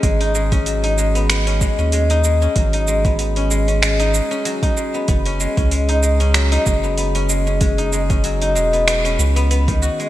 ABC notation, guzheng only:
X:1
M:4/4
L:1/16
Q:"Swing 16ths" 1/4=95
K:G#m
V:1 name="Guzheng"
G, D G, C F, D G, B, B, C G, C G, D G, C | F, D G, B, B, C G, C G, D G, C F, D G, B, | B, C G, C G, D G, C F, D G, B, B, C G, C | G, D G, C F, D G, B, B, C B, B, B, D, F G, |]